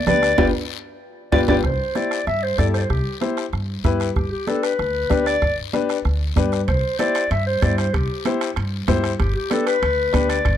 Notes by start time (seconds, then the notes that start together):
0.07 D2 D4 G4 B4 D5, bombo rim, high conga, low conga, short guiro
0.23 bombo rim, short guiro
0.38 G1 F4 G4 B4 D5, bombo low, high conga, high timbale, long guiro
1.32 G1 F4 G4 B4 D5, bombo low, high conga, high timbale, long guiro
1.48 G1 F4 G4 B4 D5, bombo low, high conga, high timbale, long guiro
1.64 C2 C5, bombo low, bombo rim, high conga, long guiro
1.95 E4 G4 C5 D5, bombo rim, high conga, short guiro
2.11 bombo rim, short guiro
2.27 G2 E5, bombo rim, high conga, long guiro
2.43 C5
2.58 G2 E4 G4 A4 D5, bombo low, bombo rim, high conga, short guiro
2.74 C5 D5, bombo rim, short guiro
2.82 C5
2.89 C2 G4, bombo low, bombo rim, high conga, long guiro
3.21 E4 G4 C5, bombo rim, high conga, short guiro
3.37 bombo rim, short guiro
3.53 G2, bombo rim, high conga, long guiro
3.84 G2 E4 G4 B4, bombo low, bombo rim, high conga, short guiro
4.00 bombo rim, short guiro
4.16 G1 G4, bombo low, bombo rim, high conga, long guiro
4.31 G4
4.47 D4 G4 A4 B4, bombo rim, high conga, short guiro
4.63 B4, bombo rim, short guiro
4.79 D2, bombo rim, high conga, long guiro
5.10 D2 D4 G4 B4, bombo low, bombo rim, high conga, short guiro
5.26 D5, bombo rim, short guiro
5.42 G1, bombo low, bombo rim, high conga, long guiro
5.73 D4 G4 B4, bombo rim, high conga, short guiro
5.89 bombo rim, short guiro
6.05 D2, bombo rim, high conga, long guiro
6.36 G2 D4 G4 B4, bombo low, bombo rim, high conga, short guiro
6.52 bombo rim, short guiro
6.68 C2 C5, bombo low, bombo rim, high conga, high timbale, long guiro
6.99 E4 G4 C5 D5, bombo rim, high conga, high timbale, short guiro
7.15 bombo rim, high timbale, short guiro
7.31 G2 E5, bombo rim, high conga, high timbale, long guiro
7.47 C5
7.62 G2 E4 G4 C5 D5, bombo low, bombo rim, high conga, high timbale, short guiro
7.78 C5, bombo rim, high timbale, short guiro
7.94 C2 G4, bombo low, bombo rim, high conga, high timbale, long guiro
8.25 E4 G4 C5, bombo rim, high conga, high timbale, short guiro
8.41 bombo rim, high timbale, short guiro
8.56 G2, bombo rim, high conga, high timbale, long guiro
8.88 G2 E4 G4 C5, bombo low, bombo rim, high conga, high timbale, low timbale, short guiro
9.04 bombo rim, high timbale, short guiro
9.20 G1 G4, bombo low, bombo rim, high conga, high timbale, long guiro
9.36 G4
9.50 D4 G4 A4 B4, bombo rim, high conga, high timbale, short guiro
9.67 B4, bombo rim, high timbale, short guiro
9.82 D2, bombo rim, high conga, high timbale, long guiro
10.13 D2 D4 G4 B4, bombo low, bombo rim, high conga, high timbale, short guiro
10.29 D5, bombo rim, high timbale, short guiro
10.45 G1, bombo low, bombo rim, high conga, high timbale, long guiro